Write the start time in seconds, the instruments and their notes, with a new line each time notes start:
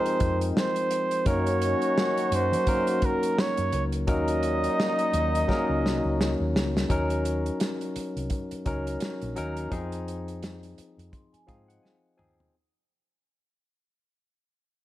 Already playing: trombone section C3 G#3 D#4, tine electric piano F3 G#3 C4 D#4 G#4 A#4, flugelhorn C5
0.06 closed hi-hat
0.20 fingered electric bass F2, kick, closed hi-hat
0.41 closed hi-hat
0.57 flugelhorn C5, snare
0.76 closed hi-hat
0.91 closed hi-hat
1.11 closed hi-hat
1.25 fingered electric bass F#2, trombone section D#3 C#4 F#4, tine electric piano F#3 A#3 C#4 D#4 A#4, flugelhorn C#5, kick, closed hi-hat
1.47 closed hi-hat
1.62 closed hi-hat
1.82 closed hi-hat
1.98 snare
2.17 closed hi-hat
2.32 fingered electric bass F#2, flugelhorn C5, closed hi-hat
2.52 fingered electric bass F#3, closed hi-hat
2.67 tine electric piano F#3 A#3 C#4 D#4 A#4, kick, closed hi-hat
2.87 closed hi-hat
3.02 flugelhorn A#4, kick, closed hi-hat
3.23 closed hi-hat
3.39 flugelhorn C#5, snare
3.57 fingered electric bass F#2, closed hi-hat
3.73 fingered electric bass C#2, closed hi-hat
3.92 closed hi-hat
4.07 fingered electric bass D#2, trombone section A#2 F#3 D#4, tine electric piano F#3 A#3 C#4 D#4 A#4, kick, closed hi-hat
4.12 flugelhorn D#5
4.28 closed hi-hat
4.43 closed hi-hat
4.64 closed hi-hat
4.80 snare
4.99 closed hi-hat
5.13 fingered electric bass D#2, closed hi-hat
5.35 closed hi-hat
5.48 tine electric piano F#3 A#3 C#4 D#4 A#4, kick, snare
5.69 fingered electric bass C#2
5.84 fingered electric bass C2, snare
6.05 fingered electric bass C#2
6.21 snare
6.40 fingered electric bass D#2
6.55 fingered electric bass C#2, snare
6.77 snare
6.89 fingered electric bass D#2, tine electric piano F#3 C#4 D#4 A#4, kick, closed hi-hat
7.10 closed hi-hat
7.25 closed hi-hat
7.46 closed hi-hat
7.60 snare, closed hi-hat
7.81 closed hi-hat
7.96 muted fingered electric bass stroke, closed hi-hat
8.16 fingered electric bass C2, closed hi-hat
8.30 kick, closed hi-hat
8.51 muted fingered electric bass stroke, closed hi-hat
8.65 fingered electric bass C#2, tine electric piano F#3 C#4 D#4 A#4, kick, closed hi-hat
8.87 closed hi-hat
9.00 snare, closed hi-hat
9.22 fingered electric bass A#1, closed hi-hat
9.36 fingered electric bass D#2, tine electric piano F#3 C#4 D#4 A#4, closed hi-hat
9.57 closed hi-hat
9.71 fingered electric bass F2, tine electric piano F3 C4 D#4 G#4, kick, closed hi-hat
9.92 closed hi-hat
10.08 closed hi-hat
10.28 closed hi-hat
10.43 snare, closed hi-hat
10.63 closed hi-hat
10.78 muted fingered electric bass stroke, closed hi-hat
10.98 fingered electric bass F2, closed hi-hat
11.12 vibraphone C6, kick, closed hi-hat
11.33 vibraphone G#5, muted fingered electric bass stroke, closed hi-hat
11.47 fingered electric bass G#2, tine electric piano F3 C4 D#4 G#4 F5, vibraphone F5, kick, closed hi-hat
11.68 vibraphone D#5, tine electric piano F#5, closed hi-hat
11.83 tine electric piano G#5, snare
12.17 fingered electric bass D#2, tine electric piano F3 C4 D#4 G#4 G#5, mid tom
12.40 floor tom